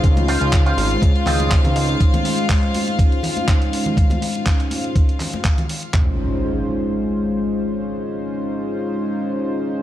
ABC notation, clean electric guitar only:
X:1
M:4/4
L:1/16
Q:"Swing 16ths" 1/4=122
K:Db
V:1 name="Clean electric guitar"
z2 [Fcf]2 z [Fcf] z4 [Fce]2 z4 | z16 | z16 | z16 |
z16 |]